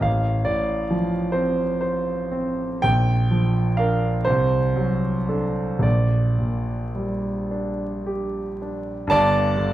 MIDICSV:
0, 0, Header, 1, 2, 480
1, 0, Start_track
1, 0, Key_signature, -2, "minor"
1, 0, Tempo, 851064
1, 33, Time_signature, 6, 3, 24, 8
1, 513, Tempo, 906344
1, 993, Tempo, 1016949
1, 1473, Tempo, 969305
1, 2433, Tempo, 1092896
1, 3873, Tempo, 1052632
1, 4353, Tempo, 923077
1, 4681, End_track
2, 0, Start_track
2, 0, Title_t, "Grand piano"
2, 0, Program_c, 0, 0
2, 0, Control_c, 0, 64, 127
2, 5, Note_on_c, 0, 33, 62
2, 13, Note_on_c, 0, 77, 77
2, 44, Control_c, 0, 64, 0
2, 119, Control_c, 0, 64, 127
2, 252, Note_on_c, 0, 74, 79
2, 262, Note_off_c, 0, 77, 0
2, 262, Note_on_c, 0, 45, 45
2, 510, Note_on_c, 0, 53, 52
2, 647, Note_off_c, 0, 45, 0
2, 731, Note_on_c, 0, 72, 73
2, 737, Note_off_c, 0, 74, 0
2, 737, Note_on_c, 0, 60, 54
2, 890, Note_off_c, 0, 53, 0
2, 981, Note_off_c, 0, 72, 0
2, 989, Note_on_c, 0, 72, 57
2, 1130, Note_off_c, 0, 60, 0
2, 1229, Note_on_c, 0, 60, 54
2, 1376, Note_off_c, 0, 72, 0
2, 1442, Note_off_c, 0, 33, 0
2, 1468, Note_on_c, 0, 79, 105
2, 1472, Note_off_c, 0, 60, 0
2, 1475, Note_on_c, 0, 34, 65
2, 1483, Control_c, 0, 64, 0
2, 1582, Control_c, 0, 64, 127
2, 1710, Note_on_c, 0, 53, 51
2, 1938, Note_on_c, 0, 77, 79
2, 1944, Note_on_c, 0, 62, 52
2, 1947, Note_off_c, 0, 79, 0
2, 1948, Note_on_c, 0, 70, 58
2, 2091, Note_off_c, 0, 53, 0
2, 2166, Note_off_c, 0, 62, 0
2, 2168, Note_off_c, 0, 70, 0
2, 2169, Note_off_c, 0, 34, 0
2, 2172, Note_on_c, 0, 72, 90
2, 2182, Note_off_c, 0, 77, 0
2, 2184, Note_on_c, 0, 36, 69
2, 2198, Control_c, 0, 64, 0
2, 2269, Control_c, 0, 64, 127
2, 2426, Note_on_c, 0, 54, 52
2, 2659, Note_on_c, 0, 62, 46
2, 2660, Note_on_c, 0, 69, 47
2, 2802, Note_off_c, 0, 54, 0
2, 2881, Note_on_c, 0, 34, 61
2, 2883, Note_off_c, 0, 36, 0
2, 2884, Note_off_c, 0, 62, 0
2, 2885, Note_off_c, 0, 69, 0
2, 2896, Note_off_c, 0, 72, 0
2, 2896, Note_on_c, 0, 74, 68
2, 2914, Control_c, 0, 64, 0
2, 2989, Control_c, 0, 64, 127
2, 3142, Note_on_c, 0, 46, 39
2, 3392, Note_on_c, 0, 55, 42
2, 3530, Note_off_c, 0, 46, 0
2, 3625, Note_off_c, 0, 74, 0
2, 3637, Note_on_c, 0, 62, 44
2, 3777, Note_off_c, 0, 55, 0
2, 3879, Note_on_c, 0, 67, 48
2, 4028, Note_off_c, 0, 62, 0
2, 4132, Note_on_c, 0, 62, 46
2, 4270, Note_off_c, 0, 67, 0
2, 4323, Note_off_c, 0, 34, 0
2, 4340, Note_on_c, 0, 43, 85
2, 4351, Note_on_c, 0, 81, 120
2, 4354, Note_on_c, 0, 31, 80
2, 4355, Note_on_c, 0, 74, 107
2, 4357, Note_off_c, 0, 62, 0
2, 4362, Control_c, 0, 64, 0
2, 4459, Control_c, 0, 64, 127
2, 4597, Note_on_c, 0, 50, 63
2, 4681, Note_off_c, 0, 31, 0
2, 4681, Note_off_c, 0, 43, 0
2, 4681, Note_off_c, 0, 50, 0
2, 4681, Note_off_c, 0, 74, 0
2, 4681, Note_off_c, 0, 81, 0
2, 4681, End_track
0, 0, End_of_file